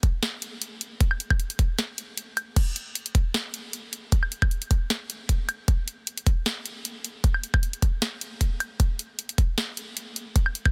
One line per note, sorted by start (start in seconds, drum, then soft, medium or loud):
0.03 kick loud
0.03 closed hi-hat medium
0.23 snare loud
0.23 closed hi-hat medium
0.42 closed hi-hat medium
0.62 closed hi-hat medium
0.81 closed hi-hat medium
1.01 kick loud
1.01 closed hi-hat medium
1.11 high woodblock medium
1.20 closed hi-hat medium
1.30 kick loud
1.30 high woodblock medium
1.40 closed hi-hat medium
1.50 closed hi-hat medium
1.59 kick loud
1.59 closed hi-hat medium
1.79 snare loud
1.79 closed hi-hat medium
1.98 closed hi-hat medium
2.17 closed hi-hat medium
2.37 closed hi-hat medium
2.37 high woodblock medium
2.56 kick loud
2.56 closed hi-hat medium
2.56 crash medium
2.76 closed hi-hat medium
2.95 closed hi-hat medium
3.06 closed hi-hat medium
3.15 kick loud
3.15 closed hi-hat medium
3.34 snare loud
3.34 closed hi-hat medium
3.54 closed hi-hat medium
3.73 closed hi-hat medium
3.93 closed hi-hat medium
4.12 kick loud
4.12 closed hi-hat medium
4.23 high woodblock medium
4.32 closed hi-hat medium
4.42 kick loud
4.42 high woodblock medium
4.51 closed hi-hat medium
4.62 closed hi-hat medium
4.71 kick loud
4.71 closed hi-hat medium
4.90 snare loud
4.90 closed hi-hat medium
5.10 closed hi-hat medium
5.29 kick medium
5.29 closed hi-hat medium
5.49 closed hi-hat medium
5.49 high woodblock medium
5.68 kick loud
5.68 closed hi-hat medium
5.88 closed hi-hat medium
6.07 closed hi-hat medium
6.18 closed hi-hat medium
6.27 kick loud
6.27 closed hi-hat medium
6.46 snare loud
6.46 closed hi-hat medium
6.66 closed hi-hat medium
6.85 closed hi-hat medium
7.04 closed hi-hat medium
7.24 kick loud
7.24 closed hi-hat medium
7.34 high woodblock medium
7.43 closed hi-hat medium
7.54 kick loud
7.54 high woodblock medium
7.63 closed hi-hat medium
7.73 closed hi-hat medium
7.82 kick loud
7.82 closed hi-hat medium
8.02 snare loud
8.02 closed hi-hat medium
8.21 closed hi-hat medium
8.41 kick medium
8.41 closed hi-hat medium
8.60 closed hi-hat medium
8.60 high woodblock medium
8.80 kick loud
8.80 closed hi-hat medium
8.99 closed hi-hat medium
9.19 closed hi-hat medium
9.29 closed hi-hat medium
9.38 kick loud
9.38 closed hi-hat medium
9.58 snare loud
9.58 closed hi-hat medium
9.77 closed hi-hat medium
9.97 closed hi-hat medium
10.16 closed hi-hat medium
10.36 kick loud
10.36 closed hi-hat medium
10.46 high woodblock medium
10.55 closed hi-hat medium
10.66 kick loud
10.66 high woodblock medium